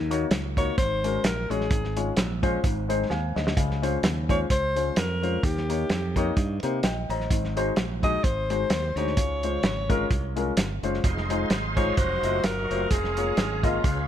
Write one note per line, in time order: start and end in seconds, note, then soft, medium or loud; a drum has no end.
0.00 0.24 D#2 medium
0.00 0.53 D#3 medium
0.10 0.25 A#3 medium
0.10 0.25 D#4 medium
0.10 0.25 F#4 medium
0.10 0.25 C#5 medium
0.10 closed hi-hat medium
0.31 0.70 C#2 medium
0.31 snare loud
0.31 closed hi-hat medium
0.57 0.71 A#3 medium
0.57 0.72 D#4 medium
0.57 0.72 F#4 medium
0.57 0.76 C#5 loud
0.57 0.72 C#5 medium
0.57 kick medium
0.57 closed hi-hat medium
0.78 1.17 G#1 loud
0.78 1.46 G#2 soft
0.78 1.26 C5 loud
0.78 kick loud
0.78 closed hi-hat medium
1.04 1.18 G#3 medium
1.04 1.18 C#4 medium
1.04 1.18 F#4 medium
1.04 1.18 A#4 medium
1.04 closed hi-hat medium
1.24 1.46 A#1 medium
1.24 1.52 A#4 medium
1.24 snare loud
1.24 closed hi-hat loud
1.50 1.68 A1 medium
1.50 1.64 G#3 medium
1.50 1.64 C#4 medium
1.50 1.65 F#4 medium
1.50 2.17 G#4 medium
1.50 1.65 C#5 medium
1.50 closed hi-hat medium
1.61 snare soft
1.71 2.10 G#1 medium
1.71 2.39 G#2 medium
1.71 kick loud
1.71 closed hi-hat medium
1.84 snare soft
1.96 2.11 G#3 medium
1.96 2.11 C#4 medium
1.96 2.11 F4 medium
1.96 2.11 C#5 medium
1.96 closed hi-hat medium
2.17 2.57 A#1 medium
2.17 snare loud
2.17 closed hi-hat medium
2.43 2.57 G#3 medium
2.43 2.57 C#4 medium
2.43 2.58 F4 medium
2.43 2.58 C5 loud
2.43 kick medium
2.43 closed hi-hat medium
2.63 3.03 G#1 loud
2.63 3.32 G#2 medium
2.63 kick loud
2.63 closed hi-hat medium
2.89 3.04 G#3 medium
2.89 3.04 C4 medium
2.89 3.04 D#4 medium
2.89 3.04 C5 medium
2.89 closed hi-hat medium
3.10 3.33 D#2 medium
3.10 3.35 F5 medium
3.10 3.35 G#5 medium
3.10 snare medium
3.36 3.54 D2 medium
3.36 3.81 C5 soft
3.36 3.80 D#5 medium
3.36 snare medium
3.47 snare medium
3.57 3.96 C#2 loud
3.57 4.25 C#3 medium
3.57 kick loud
3.57 closed hi-hat medium
3.71 snare soft
3.82 3.97 G#3 medium
3.82 3.97 C#4 medium
3.82 3.97 F4 medium
3.82 3.97 C5 medium
3.82 closed hi-hat medium
4.03 4.43 D#2 medium
4.03 snare loud
4.03 closed hi-hat medium
4.29 4.44 G#3 medium
4.29 4.44 C#4 medium
4.29 4.44 F4 medium
4.29 4.44 C5 medium
4.29 4.39 C#5 medium
4.29 kick medium
4.29 closed hi-hat medium
4.50 4.90 C#2 loud
4.50 5.00 C5 loud
4.50 kick loud
4.50 closed hi-hat medium
4.76 4.90 G#3 medium
4.76 4.90 C#4 medium
4.76 4.91 F4 medium
4.76 4.91 C5 medium
4.76 closed hi-hat medium
4.96 5.36 F2 medium
4.96 5.46 A#4 medium
4.96 snare loud
4.96 closed hi-hat loud
5.22 5.37 G#3 medium
5.22 5.37 C#4 medium
5.22 5.37 F4 medium
5.22 5.37 C5 medium
5.22 closed hi-hat soft
5.43 5.83 D#2 loud
5.43 6.12 D#3 medium
5.43 6.17 G4 medium
5.43 kick loud
5.43 closed hi-hat medium
5.57 snare soft
5.69 5.84 A#3 medium
5.69 5.84 D#4 medium
5.69 5.84 G4 medium
5.69 5.84 C#5 medium
5.69 closed hi-hat medium
5.90 6.30 F2 medium
5.90 snare loud
5.90 closed hi-hat medium
6.16 6.30 A#3 medium
6.16 6.31 D#4 medium
6.16 6.60 D#4 medium
6.16 6.31 G4 medium
6.16 6.31 C#5 medium
6.16 kick medium
6.16 closed hi-hat medium
6.37 6.59 G2 medium
6.37 kick loud
6.37 closed hi-hat medium
6.63 6.81 C3 medium
6.63 6.77 A#3 medium
6.63 6.77 D#4 medium
6.63 6.78 G4 medium
6.63 6.78 C5 medium
6.63 closed hi-hat medium
6.83 7.06 A#1 medium
6.83 7.09 D#5 medium
6.83 7.08 G5 medium
6.83 snare loud
6.83 closed hi-hat loud
7.09 7.27 A1 medium
7.09 7.54 C5 medium
7.09 7.54 D#5 medium
7.09 7.29 A#5 medium
7.09 closed hi-hat medium
7.20 snare soft
7.30 7.70 G#1 loud
7.30 7.99 G#2 medium
7.30 kick loud
7.30 closed hi-hat medium
7.44 snare soft
7.56 7.71 G#3 medium
7.56 7.71 D#4 medium
7.56 7.71 F#4 medium
7.56 7.71 C5 medium
7.56 closed hi-hat medium
7.76 8.17 A#1 medium
7.76 snare loud
7.76 closed hi-hat medium
8.03 8.17 G#3 medium
8.03 8.17 D#4 medium
8.03 8.18 F#4 medium
8.03 8.18 G#4 medium
8.03 8.25 D#5 loud
8.03 kick medium
8.03 closed hi-hat medium
8.24 8.64 G#1 medium
8.24 8.98 C5 loud
8.24 kick loud
8.24 closed hi-hat medium
8.50 8.64 G#3 medium
8.50 8.64 D#4 medium
8.50 8.64 F#4 medium
8.50 8.65 C5 medium
8.50 closed hi-hat medium
8.70 8.92 D#2 medium
8.70 snare loud
8.70 closed hi-hat loud
8.96 9.14 D2 medium
8.96 9.11 G#3 medium
8.96 9.11 D#4 medium
8.96 9.11 F#4 medium
8.96 9.11 C5 medium
8.96 10.57 C#5 medium
8.96 closed hi-hat medium
9.07 snare soft
9.17 9.57 C#2 medium
9.17 9.86 C#3 medium
9.17 kick loud
9.17 closed hi-hat medium
9.43 9.58 G#3 medium
9.43 9.58 C#4 soft
9.43 9.58 F4 medium
9.43 9.58 C5 medium
9.43 closed hi-hat medium
9.63 10.03 G#1 medium
9.63 snare loud
9.63 closed hi-hat medium
9.89 10.04 G#3 medium
9.89 10.04 C#4 medium
9.89 10.04 F4 medium
9.89 10.04 A#4 loud
9.89 kick medium
9.89 closed hi-hat medium
10.11 10.50 C2 loud
10.11 kick loud
10.11 closed hi-hat medium
10.36 10.51 G#3 medium
10.36 10.51 C#4 medium
10.36 10.51 F4 medium
10.36 10.51 A#4 medium
10.36 closed hi-hat medium
10.57 10.79 G1 medium
10.57 snare loud
10.57 closed hi-hat loud
10.83 11.01 F#1 medium
10.83 10.98 G#3 medium
10.83 10.98 C#4 medium
10.83 10.98 F4 medium
10.83 10.98 C5 medium
10.83 closed hi-hat medium
10.94 snare soft
11.04 11.44 F1 medium
11.04 11.11 F#3 medium
11.04 11.96 D#4 medium
11.04 11.96 F4 medium
11.04 11.96 C5 medium
11.04 kick loud
11.04 closed hi-hat medium
11.10 11.99 G#3 medium
11.17 snare soft
11.30 11.44 G#3 medium
11.30 11.44 D#4 medium
11.30 11.45 F4 medium
11.30 11.45 C5 medium
11.30 closed hi-hat medium
11.50 11.90 G#1 medium
11.50 snare loud
11.50 closed hi-hat medium
11.77 11.91 G#3 medium
11.77 11.91 D#4 medium
11.77 11.91 F4 medium
11.77 11.92 C5 medium
11.77 11.99 C#5 medium
11.77 kick medium
11.77 closed hi-hat medium
11.97 12.20 F1 medium
11.97 12.89 F#3 medium
11.97 12.89 D#4 medium
11.97 12.89 F4 medium
11.97 12.89 F#4 medium
11.97 12.46 C5 loud
11.97 kick loud
11.97 closed hi-hat medium
12.23 12.41 F#1 medium
12.23 12.38 A3 medium
12.23 12.38 F4 soft
12.23 12.38 F#4 medium
12.23 12.38 D#5 medium
12.23 closed hi-hat medium
12.44 12.66 G1 medium
12.44 12.93 A#4 loud
12.44 snare loud
12.44 closed hi-hat loud
12.70 12.88 F#1 medium
12.70 12.85 A3 medium
12.70 12.85 F4 medium
12.70 12.85 F#4 medium
12.70 12.85 C5 medium
12.70 closed hi-hat medium
12.91 13.31 F1 medium
12.91 13.82 G#3 medium
12.91 12.97 C4 soft
12.91 13.82 F4 medium
12.91 13.66 G#4 medium
12.91 13.82 A#4 medium
12.91 kick loud
12.91 closed hi-hat medium
12.97 13.82 C#4 medium
13.04 snare soft
13.17 13.32 A#3 medium
13.17 13.32 F4 medium
13.17 13.32 G#4 medium
13.17 13.32 C#5 medium
13.17 closed hi-hat medium
13.37 13.77 G#1 medium
13.37 snare loud
13.37 closed hi-hat medium
13.63 13.78 A#3 medium
13.63 13.78 F4 medium
13.63 14.08 F4 medium
13.63 13.78 G#4 medium
13.63 13.78 D#5 medium
13.63 kick medium
13.63 closed hi-hat medium
13.83 14.08 C#2 loud
13.83 14.08 C#3 medium
13.83 14.08 G#3 medium
13.83 14.08 C#4 medium
13.83 14.08 F4 medium
13.83 14.08 B4 medium
13.83 kick loud
13.83 closed hi-hat medium